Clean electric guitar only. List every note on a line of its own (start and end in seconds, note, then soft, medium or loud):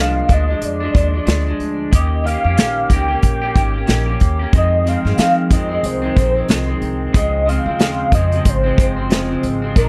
0.00 0.26 A#2 medium
0.00 0.28 F3 medium
0.00 0.30 G#3 medium
0.00 0.30 D4 medium
0.28 0.48 A#2 medium
0.28 0.49 F3 medium
0.28 0.49 G#3 medium
0.32 0.46 D4 medium
0.48 0.81 G#3 medium
0.48 0.79 D4 soft
0.52 0.83 F3 soft
0.80 0.94 F3 soft
0.80 0.95 G#3 soft
0.80 0.94 D4 soft
0.94 1.14 A#2 medium
0.94 1.15 F3 medium
0.94 1.14 G#3 medium
0.94 1.12 D4 medium
1.13 1.27 G#3 soft
1.13 1.27 D4 soft
1.17 1.26 F3 soft
1.26 1.46 A#2 medium
1.26 1.47 F3 medium
1.26 1.47 G#3 medium
1.26 1.44 D4 medium
1.46 1.93 G#3 medium
1.46 1.92 D4 medium
1.50 1.91 F3 soft
1.92 2.23 D#3 medium
1.92 2.24 A#3 medium
1.92 2.26 C#4 medium
1.92 2.26 G4 medium
2.24 2.44 D#3 medium
2.24 2.45 A#3 medium
2.24 2.45 C#4 medium
2.28 2.42 G4 medium
2.44 2.57 C#4 soft
2.44 2.57 G4 soft
2.48 2.56 A#3 soft
2.57 2.88 D#3 medium
2.57 2.89 A#3 medium
2.57 2.91 C#4 medium
2.57 2.91 G4 medium
2.89 3.09 D#3 soft
2.89 3.10 A#3 medium
2.89 3.09 C#4 medium
2.93 3.07 G4 medium
3.08 3.42 C#4 medium
3.08 3.40 G4 medium
3.12 3.44 A#3 soft
3.42 3.55 A#3 soft
3.42 3.56 C#4 soft
3.42 3.55 G4 medium
3.54 3.75 D#3 medium
3.54 3.76 A#3 medium
3.54 3.75 C#4 medium
3.54 3.72 G4 medium
3.74 3.88 C#4 soft
3.74 3.88 G4 soft
3.78 3.87 A#3 soft
3.87 4.07 D#3 medium
3.87 4.08 A#3 medium
3.87 4.07 C#4 medium
3.87 4.05 G4 medium
4.06 4.42 A#3 soft
4.06 4.40 C#4 medium
4.06 4.38 G4 medium
4.39 4.54 A#3 soft
4.39 4.54 C#4 soft
4.39 4.53 G4 soft
4.53 4.83 F2 medium
4.53 4.85 D#3 medium
4.53 4.86 G#3 medium
4.53 4.87 C4 medium
4.85 5.05 F2 medium
4.85 5.06 D#3 medium
4.85 5.06 G#3 medium
4.85 5.04 C4 medium
5.05 5.18 D#3 soft
5.05 5.19 G#3 soft
5.05 5.18 C4 soft
5.18 5.49 F2 medium
5.18 5.50 D#3 medium
5.18 5.52 G#3 medium
5.18 5.52 C4 medium
5.50 5.70 F2 medium
5.50 5.71 D#3 medium
5.50 5.70 G#3 medium
5.50 5.68 C4 medium
5.69 6.03 G#3 soft
5.69 6.01 C4 medium
5.73 6.05 D#3 soft
6.02 6.17 G#3 soft
6.02 6.16 C4 medium
6.06 6.15 D#3 soft
6.15 6.35 F2 medium
6.15 6.36 D#3 medium
6.15 6.35 G#3 medium
6.15 6.34 C4 medium
6.35 6.48 D#3 soft
6.35 6.49 G#3 soft
6.35 6.49 C4 soft
6.48 6.68 F2 medium
6.48 6.69 D#3 medium
6.48 6.68 G#3 medium
6.48 6.66 C4 medium
6.67 7.14 D#3 soft
6.67 7.14 G#3 medium
6.67 7.14 C4 medium
7.13 7.45 C#3 medium
7.13 7.46 F3 medium
7.13 7.47 G#3 medium
7.13 7.48 C4 medium
7.46 7.66 C#3 medium
7.46 7.67 F3 medium
7.46 7.67 G#3 medium
7.46 7.65 C4 medium
7.66 7.79 F3 soft
7.66 7.80 G#3 soft
7.66 7.80 C4 medium
7.79 8.11 C#3 medium
7.79 8.12 F3 medium
7.79 8.13 G#3 medium
7.79 8.14 C4 medium
8.12 8.32 C#3 medium
8.12 8.33 F3 medium
8.12 8.33 G#3 medium
8.12 8.30 C4 medium
8.31 8.65 G#3 soft
8.31 8.63 C4 medium
8.36 8.66 F3 soft
8.64 8.78 F3 soft
8.64 8.79 G#3 soft
8.64 8.77 C4 medium
8.77 8.97 C#3 medium
8.77 8.98 F3 medium
8.77 8.97 G#3 medium
8.81 8.95 C4 medium
8.96 9.10 F3 soft
8.96 9.10 G#3 soft
8.96 9.10 C4 medium
9.10 9.30 C#3 medium
9.10 9.30 F3 medium
9.10 9.30 G#3 medium
9.10 9.27 C4 medium
9.28 9.63 G#3 medium
9.28 9.61 C4 medium
9.33 9.64 F3 soft
9.62 9.76 F3 soft
9.62 9.77 G#3 soft
9.62 9.76 C4 soft
9.76 9.89 A#2 medium
9.76 9.89 F3 medium
9.76 9.89 G#3 medium
9.76 9.89 D4 medium